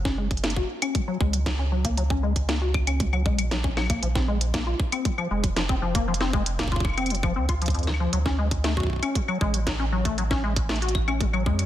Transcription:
Already playing: F#1
0.05 C#4, kick, snare
0.18 G#3
0.31 kick, closed hi-hat
0.37 closed hi-hat
0.44 A#3, snare, closed hi-hat
0.50 closed hi-hat
0.56 F#4, kick
0.82 C#4, closed hi-hat, claves
0.95 F#3, kick, closed hi-hat
1.08 F#3
1.21 C#2 G#3, kick
1.33 F#3, closed hi-hat
1.46 F#3, kick, snare, closed hi-hat
1.59 C#4
1.72 F#3
1.85 A#3, kick, closed hi-hat
1.97 F#3, closed hi-hat
2.10 C#4, kick
2.23 G#3
2.36 kick, closed hi-hat
2.49 A#3, snare, closed hi-hat
2.62 F#4
2.74 kick, claves
2.87 C#4, closed hi-hat, claves
3.00 F#3, kick, closed hi-hat
3.13 F#3, claves
3.26 A#1 G#3, kick
3.38 F#3, closed hi-hat, claves
3.51 F#3, snare, closed hi-hat
3.64 C#4, kick
3.77 F#3, snare, claves
3.81 claves
3.85 claves
3.90 A#3, kick, closed hi-hat, claves
3.94 claves
3.98 claves
4.03 A#1 F3, closed hi-hat
4.15 C4, kick, snare
4.28 G#3
4.41 closed hi-hat
4.54 A#3, kick, snare, closed hi-hat
4.67 F4
4.80 kick
4.92 C4, closed hi-hat, claves
5.05 F3, kick, closed hi-hat
5.18 F3, claves
5.31 F1 G#3
5.44 F3, kick, closed hi-hat
5.56 F3, snare, closed hi-hat
5.69 C4, kick
5.82 F3
5.95 A#3, kick, closed hi-hat
6.08 F3
6.14 closed hi-hat
6.21 C4, snare
6.33 G#3, kick
6.46 closed hi-hat
6.59 A#3, kick, snare, closed hi-hat
6.63 kick
6.68 kick
6.72 F4, kick
6.76 kick
6.80 kick
6.85 kick, claves
6.89 claves
6.93 claves
6.98 C4, closed hi-hat, claves
7.02 claves
7.06 closed hi-hat, claves
7.10 F3, closed hi-hat
7.15 closed hi-hat
7.23 F3, kick, claves
7.36 D2 C4
7.49 F4, kick, closed hi-hat, claves
7.62 F3, closed hi-hat
7.66 kick, closed hi-hat
7.70 closed hi-hat
7.74 F2, closed hi-hat
7.79 closed hi-hat
7.83 closed hi-hat
7.87 G#3, snare, claves
7.94 claves
8.00 F3
8.13 D2 F#3, closed hi-hat
8.26 C#4, kick, snare
8.39 G#3
8.51 kick, closed hi-hat
8.64 A3, snare, closed hi-hat
8.77 F#4, kick
8.80 kick
8.83 kick
8.87 kick
8.90 kick
8.93 kick
8.96 kick
8.99 C#4, kick, closed hi-hat, claves
9.15 F#3, kick, closed hi-hat
9.28 F#3, claves
9.41 A1 G#3, kick
9.54 F#3, closed hi-hat
9.67 F#3, kick, snare, closed hi-hat
9.80 C#4
9.92 F#3
10.05 A3, kick, closed hi-hat
10.18 F#3, closed hi-hat
10.31 C#4, kick, snare
10.44 G#3
10.56 kick, closed hi-hat
10.69 A3, snare, closed hi-hat
10.76 closed hi-hat
10.82 F#4, closed hi-hat
10.88 closed hi-hat
10.95 kick, claves
11.08 C#4, claves
11.21 F#3, kick, closed hi-hat
11.33 F#3, claves
11.46 F#2 G#3, kick
11.59 F#3, closed hi-hat, claves

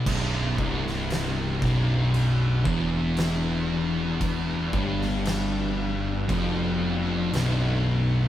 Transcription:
0.06 B0 B1 B3 D4 F#4, kick, crash
0.58 C1 C2, kick
0.87 snare
1.10 snare, crash
1.62 B0 B1, kick, snare
2.14 crash
2.65 E1 E2, kick
3.17 snare, crash
4.21 kick, crash
4.73 G1 G2, kick
5.02 snare
5.25 snare, crash
6.29 F1 F2, kick, crash
7.33 B0 B1, snare, crash

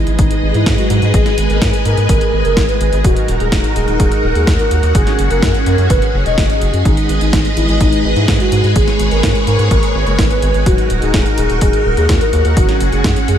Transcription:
Already playing: G#3 E4 G#4 B4 D#5
0.07 G#1, closed hi-hat
0.19 G#1 D#4, kick, closed hi-hat
0.31 closed hi-hat
0.42 G#1
0.54 G#2 E4, closed hi-hat
0.66 G#2, kick, snare, closed hi-hat
0.78 F#4, closed hi-hat
0.90 G#2, closed hi-hat
1.02 G#2, closed hi-hat
1.14 G#1 G#4, kick, closed hi-hat
1.26 snare, closed hi-hat
1.38 G#1, closed hi-hat
1.50 G#1 A#4, closed hi-hat
1.61 G#2, kick, snare, closed hi-hat
1.74 closed hi-hat
1.85 G#2 A#4, closed hi-hat
1.97 G#2, closed hi-hat
2.09 G#1 A#4, kick, closed hi-hat
2.21 closed hi-hat
2.33 G#1
2.45 F#1 A#4, closed hi-hat
2.57 G#1, kick, snare, closed hi-hat
2.69 B4, closed hi-hat
2.81 G#1, closed hi-hat
2.92 G#1, closed hi-hat
3.04 D#1 D#4 F#4 A#4, kick, closed hi-hat
3.16 closed hi-hat
3.28 D#1, closed hi-hat
3.40 D#1 G#4, closed hi-hat
3.52 D#1, kick, snare, closed hi-hat
3.64 closed hi-hat
3.76 D#1 G#4, closed hi-hat
3.88 D#1, closed hi-hat
4.00 D#1 G#4, kick, closed hi-hat
4.12 closed hi-hat
4.23 D#1
4.35 D#2 G#4, closed hi-hat
4.47 D#2, kick, snare, closed hi-hat
4.59 A#4, closed hi-hat
4.71 D#2, closed hi-hat
4.83 D#2, closed hi-hat
4.95 F#1 C#4 G#4, kick, closed hi-hat
5.07 snare, closed hi-hat
5.19 F#1, closed hi-hat
5.30 F#1 A#4, closed hi-hat
5.42 F#2, kick, snare, closed hi-hat
5.54 closed hi-hat
5.66 F#2 A#4, closed hi-hat
5.78 F#2, closed hi-hat
5.90 F#1 B4, kick, closed hi-hat
6.02 closed hi-hat
6.14 F#1
6.26 E1 D#5, closed hi-hat
6.38 F#1, kick, snare, closed hi-hat
6.50 D#5, closed hi-hat
6.61 F#1, closed hi-hat
6.73 F#2, closed hi-hat
6.85 G#1 G#3 D#4 B4 D#5, kick, closed hi-hat
6.97 closed hi-hat
7.09 G#1, closed hi-hat
7.21 G#1 D#4, closed hi-hat
7.33 G#1, kick, snare, closed hi-hat
7.45 closed hi-hat
7.57 G#1 E4, closed hi-hat
7.68 G#1, closed hi-hat
7.81 G#1 D#4, kick, closed hi-hat
7.93 closed hi-hat
8.04 G#1
8.16 G#2 E4, closed hi-hat
8.28 G#2, kick, snare, closed hi-hat
8.40 F#4, closed hi-hat
8.52 G#2, closed hi-hat
8.64 G#2, closed hi-hat
8.76 G#1 G#4 C#5, kick, closed hi-hat
8.88 snare, closed hi-hat
8.99 G#1, closed hi-hat
9.11 G#1 A#4, closed hi-hat
9.23 G#2, kick, snare, closed hi-hat
9.35 closed hi-hat
9.47 G#2 A#4, closed hi-hat
9.59 G#2, closed hi-hat
9.71 G#1 A#4, kick, closed hi-hat
9.83 closed hi-hat
9.95 G#1
10.07 F#1 A#4, closed hi-hat
10.19 G#1, kick, snare, closed hi-hat
10.31 B4, closed hi-hat
10.42 G#1, closed hi-hat
10.54 G#1, closed hi-hat
10.66 D#1 D#4 F#4 A#4, kick, closed hi-hat
10.78 closed hi-hat
10.90 D#1, closed hi-hat
11.02 D#1 G#4, closed hi-hat
11.14 D#1, kick, snare, closed hi-hat
11.26 closed hi-hat
11.38 D#1 G#4, closed hi-hat
11.50 D#1, closed hi-hat
11.61 D#1 G#4, kick, closed hi-hat
11.73 closed hi-hat
11.85 D#1
11.97 D#2 G#4, closed hi-hat
12.09 D#2, kick, snare, closed hi-hat
12.21 A#4, closed hi-hat
12.33 D#2, closed hi-hat
12.45 D#2, closed hi-hat
12.57 F#1 C#4 F#4 G#4, kick, closed hi-hat
12.69 snare, closed hi-hat
12.81 F#1, closed hi-hat
12.92 F#1 G#4, closed hi-hat
13.04 F#2, kick, snare, closed hi-hat
13.16 closed hi-hat
13.28 F#2 G#4, closed hi-hat

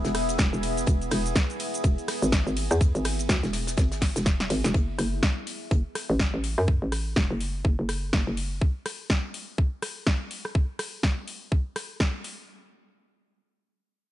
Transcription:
Already playing: B3 E4 G#4 E5
0.04 E1, snare, closed hi-hat, shaker
0.15 cross-stick, open hi-hat, ride
0.29 closed hi-hat, shaker
0.38 E1, kick, snare, closed hi-hat, shaker
0.53 E1, shaker
0.63 closed hi-hat, open hi-hat, ride
0.77 snare, closed hi-hat, shaker
0.86 E1, kick, closed hi-hat, shaker
1.01 closed hi-hat, shaker
1.11 E1, cross-stick, closed hi-hat, open hi-hat, ride
1.26 closed hi-hat, shaker
1.35 kick, snare, closed hi-hat, shaker
1.50 closed hi-hat, shaker
1.60 closed hi-hat, open hi-hat, ride
1.74 closed hi-hat, shaker
1.84 E1, kick, closed hi-hat, shaker
1.98 closed hi-hat, shaker
2.08 cross-stick, snare, closed hi-hat, open hi-hat, ride
2.22 G#1, closed hi-hat, shaker
2.32 kick, snare, closed hi-hat, shaker
2.47 G#1, shaker
2.57 closed hi-hat, open hi-hat, ride
2.71 E2, cross-stick, closed hi-hat, shaker
2.81 kick, closed hi-hat, shaker
2.95 G#1, closed hi-hat, shaker
3.05 cross-stick, closed hi-hat, open hi-hat, ride
3.19 closed hi-hat, shaker
3.29 D2, kick, snare, closed hi-hat, shaker
3.43 E1, snare, closed hi-hat, shaker
3.53 snare, closed hi-hat, open hi-hat, ride
3.67 snare, closed hi-hat, shaker
3.77 G#1, kick, snare, closed hi-hat, shaker
3.92 snare, closed hi-hat, shaker
4.01 kick, snare, closed hi-hat, open hi-hat, ride
4.16 E1, snare, closed hi-hat, shaker
4.25 kick, snare, closed hi-hat, shaker
4.40 snare, closed hi-hat, shaker
4.50 G#1, closed hi-hat, open hi-hat, ride
4.64 E1, snare, closed hi-hat, shaker
4.74 F#1, kick, closed hi-hat
4.99 F#1, cross-stick, closed hi-hat, open hi-hat
5.23 kick, snare, closed hi-hat
5.47 closed hi-hat, open hi-hat
5.71 F#1, kick, closed hi-hat
5.95 cross-stick, snare, closed hi-hat, open hi-hat
6.10 A1
6.19 kick, snare, closed hi-hat
6.34 A1
6.44 closed hi-hat, open hi-hat
6.58 F#2, cross-stick
6.68 kick
6.82 A1
6.92 cross-stick, open hi-hat
7.16 E1, kick, snare
7.31 F#1
7.40 open hi-hat
7.65 F#1, kick
7.79 F#1
7.89 cross-stick, open hi-hat
8.13 F#1, kick, snare
8.27 F#1
8.37 open hi-hat
8.61 kick
8.86 cross-stick, open hi-hat
9.10 kick, snare
9.34 open hi-hat
9.58 kick
9.82 cross-stick, open hi-hat
10.07 kick, snare
10.31 open hi-hat
10.45 cross-stick
10.55 kick
10.79 cross-stick, open hi-hat
11.03 kick, snare
11.28 open hi-hat
11.52 kick
11.76 cross-stick, open hi-hat
12.00 kick, cross-stick, snare
12.24 open hi-hat

